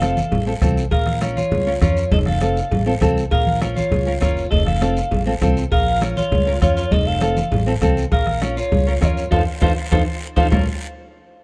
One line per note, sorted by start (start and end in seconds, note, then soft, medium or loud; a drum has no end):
0.00 0.20 F1 loud
0.00 0.17 C4 medium
0.00 0.17 F4 medium
0.00 0.42 A4 medium
0.00 0.18 A4 medium
0.00 0.42 F5 medium
0.00 bombo rim medium
0.00 high conga medium
0.00 short guiro medium
0.17 high conga medium
0.17 short guiro medium
0.32 0.56 A1 medium
0.32 cowbell medium
0.32 high conga soft
0.32 low conga medium
0.32 long guiro medium
0.46 0.52 C4 medium
0.46 0.52 F4 medium
0.46 0.52 A4 medium
0.62 0.86 C2 medium
0.62 0.83 C4 medium
0.62 0.83 F4 medium
0.62 0.83 A4 medium
0.62 bombo low medium
0.62 bombo rim medium
0.62 high conga medium
0.62 low conga medium
0.62 short guiro medium
0.77 short guiro medium
0.91 1.40 A#1 medium
0.91 1.20 A#4 medium
0.91 1.20 F5 loud
0.91 bombo low medium
0.91 cowbell loud
0.91 high conga soft
0.91 long guiro medium
1.06 bombo rim medium
1.06 high conga medium
1.21 1.37 C#4 medium
1.21 1.37 F4 medium
1.21 1.38 A#4 medium
1.21 bombo rim medium
1.21 high conga medium
1.21 short guiro medium
1.37 1.79 F4 medium
1.37 1.79 C#5 medium
1.37 high conga medium
1.37 short guiro medium
1.52 1.76 C#2 medium
1.52 cowbell medium
1.52 high conga soft
1.52 low conga medium
1.52 long guiro medium
1.66 1.72 C#4 medium
1.66 1.72 F4 medium
1.66 1.72 A#4 medium
1.81 2.06 F2 medium
1.81 2.03 C#4 medium
1.81 2.03 F4 medium
1.81 2.10 F4 medium
1.81 2.03 A#4 medium
1.81 2.10 C#5 medium
1.81 bombo low medium
1.81 bombo rim medium
1.81 high conga medium
1.81 short guiro medium
1.97 short guiro medium
2.11 2.60 F1 loud
2.11 2.17 A4 medium
2.11 2.19 D#5 medium
2.11 bombo low medium
2.11 cowbell loud
2.11 high conga soft
2.11 low conga medium
2.11 long guiro medium
2.26 2.83 A4 medium
2.26 2.83 F5 medium
2.26 bombo rim medium
2.26 high conga medium
2.41 2.57 C4 medium
2.41 2.58 F4 medium
2.41 2.58 A4 medium
2.41 bombo rim medium
2.41 high conga medium
2.41 short guiro medium
2.57 short guiro medium
2.71 2.96 A1 medium
2.71 cowbell medium
2.71 high conga soft
2.71 low conga medium
2.71 long guiro medium
2.86 2.92 C4 medium
2.86 2.92 F4 medium
2.86 2.92 A4 medium
3.01 3.26 C2 medium
3.01 3.22 C4 medium
3.01 3.23 F4 medium
3.01 3.23 A4 loud
3.01 bombo low medium
3.01 bombo rim medium
3.01 high conga medium
3.01 low conga medium
3.01 short guiro medium
3.17 short guiro medium
3.31 3.80 A#1 medium
3.31 3.60 A#4 medium
3.31 3.59 F5 loud
3.31 bombo low medium
3.31 cowbell loud
3.31 high conga soft
3.31 long guiro medium
3.47 high conga medium
3.61 3.77 C#4 medium
3.61 3.77 F4 medium
3.61 3.78 A#4 medium
3.61 bombo rim medium
3.61 high conga loud
3.61 short guiro medium
3.75 4.18 F4 medium
3.75 4.18 C#5 loud
3.75 high conga medium
3.75 short guiro medium
3.91 4.16 C#2 medium
3.91 cowbell medium
3.91 high conga soft
3.91 low conga medium
3.91 long guiro medium
4.06 4.12 C#4 medium
4.06 4.12 F4 medium
4.06 4.12 A#4 medium
4.20 4.46 F#1 medium
4.20 4.43 C#4 medium
4.20 4.49 F4 medium
4.20 4.43 F4 medium
4.20 4.43 A#4 medium
4.20 4.49 C#5 medium
4.20 bombo low medium
4.20 bombo rim medium
4.20 high conga medium
4.20 short guiro medium
4.37 short guiro medium
4.50 5.00 F1 medium
4.50 4.65 A4 medium
4.50 4.65 D#5 medium
4.50 bombo low medium
4.50 cowbell loud
4.50 long guiro medium
4.65 5.23 A4 medium
4.65 5.22 F5 medium
4.65 bombo rim medium
4.65 high conga medium
4.81 4.97 C4 medium
4.81 4.97 F4 medium
4.81 4.98 A4 medium
4.81 bombo rim medium
4.81 high conga medium
4.81 short guiro medium
4.97 short guiro medium
5.11 5.36 A1 medium
5.11 cowbell medium
5.11 high conga soft
5.11 low conga medium
5.11 long guiro medium
5.26 5.32 C4 medium
5.26 5.32 F4 medium
5.26 5.32 A4 medium
5.41 5.66 C2 medium
5.41 5.62 C4 medium
5.41 5.63 F4 medium
5.41 5.63 A4 medium
5.41 bombo low medium
5.41 bombo rim medium
5.41 high conga medium
5.41 low conga medium
5.41 short guiro medium
5.57 short guiro medium
5.71 6.20 A#1 medium
5.71 6.00 A#4 medium
5.71 6.00 F5 loud
5.71 bombo low medium
5.71 cowbell loud
5.71 high conga soft
5.71 long guiro medium
6.01 6.17 C#4 medium
6.01 6.17 F4 medium
6.01 6.18 A#4 medium
6.01 bombo rim medium
6.01 high conga medium
6.01 short guiro medium
6.17 6.59 F4 medium
6.17 6.59 C#5 medium
6.17 high conga medium
6.17 short guiro medium
6.32 6.56 C#2 medium
6.32 cowbell medium
6.32 high conga soft
6.32 low conga medium
6.32 long guiro medium
6.46 6.52 C#4 medium
6.46 6.52 F4 medium
6.46 6.52 A#4 medium
6.62 6.86 F2 medium
6.62 6.83 C#4 medium
6.62 6.76 F4 medium
6.62 6.83 F4 medium
6.62 6.83 A#4 medium
6.62 6.76 C#5 medium
6.62 bombo low medium
6.62 bombo rim medium
6.62 high conga medium
6.62 short guiro medium
6.77 6.92 F4 medium
6.77 6.93 C#5 medium
6.77 short guiro medium
6.91 7.40 F1 medium
6.91 7.06 A4 medium
6.91 7.08 D#5 medium
6.91 bombo low medium
6.91 cowbell loud
6.91 high conga soft
6.91 low conga medium
6.91 long guiro medium
7.07 7.67 A4 medium
7.07 7.67 F5 medium
7.21 7.37 C4 medium
7.21 7.37 F4 medium
7.21 7.38 A4 medium
7.21 bombo rim medium
7.21 high conga medium
7.21 short guiro medium
7.37 high conga medium
7.37 short guiro medium
7.52 7.76 A1 medium
7.52 cowbell medium
7.52 high conga soft
7.52 low conga medium
7.52 long guiro medium
7.66 7.72 C4 medium
7.66 7.72 F4 medium
7.66 7.72 A4 medium
7.82 8.06 C2 medium
7.82 8.03 C4 medium
7.82 8.03 F4 medium
7.82 8.03 A4 loud
7.82 bombo low medium
7.82 bombo rim medium
7.82 high conga medium
7.82 low conga medium
7.82 short guiro medium
7.97 short guiro medium
8.12 8.60 A#1 medium
8.12 8.40 A#4 medium
8.12 8.40 F5 loud
8.12 bombo low medium
8.12 cowbell loud
8.12 long guiro medium
8.27 bombo rim medium
8.27 high conga medium
8.41 8.57 C#4 medium
8.41 8.58 F4 medium
8.41 8.58 A#4 medium
8.41 bombo rim medium
8.41 high conga loud
8.41 short guiro medium
8.57 8.99 F4 medium
8.57 8.99 C#5 medium
8.57 short guiro medium
8.72 8.96 C#2 medium
8.72 cowbell medium
8.72 high conga soft
8.72 low conga medium
8.72 long guiro medium
8.87 8.92 C#4 medium
8.87 8.92 F4 medium
8.87 8.92 A#4 medium
9.01 9.26 F2 medium
9.01 9.22 C#4 medium
9.01 9.22 F4 medium
9.01 9.30 F4 medium
9.01 9.23 A#4 medium
9.01 9.08 D#5 medium
9.01 bombo low medium
9.01 bombo rim medium
9.01 high conga medium
9.01 short guiro medium
9.07 9.30 C#5 medium
9.17 short guiro medium
9.31 9.43 F2 loud
9.31 9.41 D#4 medium
9.31 9.41 F4 loud
9.31 9.41 F4 medium
9.31 9.41 A4 medium
9.31 9.41 A4 loud
9.31 9.41 C5 medium
9.31 9.41 F5 medium
9.31 bombo low loud
9.31 high conga medium
9.31 high timbale loud
9.31 long guiro medium
9.61 9.73 F2 loud
9.61 9.71 D#4 medium
9.61 9.71 F4 medium
9.61 9.72 F4 medium
9.61 9.71 A4 loud
9.61 9.72 A4 medium
9.61 9.72 C5 medium
9.61 9.72 F5 medium
9.61 bombo low loud
9.61 high conga loud
9.61 high timbale loud
9.61 long guiro loud
9.92 10.03 F2 medium
9.92 10.01 D#4 medium
9.92 10.01 F4 loud
9.92 10.01 F4 medium
9.92 10.01 A4 medium
9.92 10.01 A4 loud
9.92 10.01 C5 medium
9.92 10.02 F5 medium
9.92 bombo low loud
9.92 high conga loud
9.92 high timbale medium
9.92 long guiro medium
10.36 10.48 F2 medium
10.36 10.46 D#4 medium
10.36 10.46 F4 medium
10.36 10.46 A4 loud
10.36 10.46 A4 medium
10.36 10.46 C5 loud
10.36 10.47 F5 loud
10.36 bombo low loud
10.36 high conga medium
10.36 high timbale medium
10.36 long guiro medium
10.51 10.66 A#1 medium
10.51 10.65 C#4 medium
10.51 10.65 F4 medium
10.51 10.66 A#4 medium
10.51 10.66 C#5 medium
10.51 bombo low loud
10.51 low conga loud
10.51 low timbale loud
10.51 long guiro loud